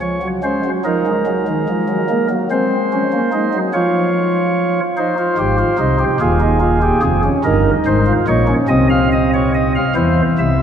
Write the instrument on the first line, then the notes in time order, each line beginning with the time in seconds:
pipe organ
0.01 F3 C#5
0.22 F#3
0.43 G#3 C#4 C5
0.65 F#3
0.84 F3 D#4 A#4
1.06 G#3
1.26 F#3 G#3
1.48 D#3
1.68 F3
1.89 F#3
2.09 G#3 A#3
2.30 F#3
2.51 G#3 C4 C5
2.93 C#4
3.13 A#3
3.33 G#3 D#4
3.54 F#3
3.73 F3 F4 C#5
4.97 D#4 C5
5.18 F4
5.38 G#1 G#2 G4
5.59 F4
5.78 C2 C3 D#4
5.99 G4
6.20 D#1 D#2 F4 G#4
6.40 D#4
6.60 F4
6.82 G4
7.02 F1 F2 G#4
7.24 C#4
7.44 G1 G2 D#4 A#4
7.86 G#1 G#2 C5
8.06 F4
8.28 A#1 A#2 D#4 C#5
8.48 C#4
8.68 C2 C3 C4 D#5
8.90 F5
9.12 D#5
9.34 C#5
9.55 D#5
9.75 F5
9.95 E2 E3 E4 C5
10.39 C2 C3 E5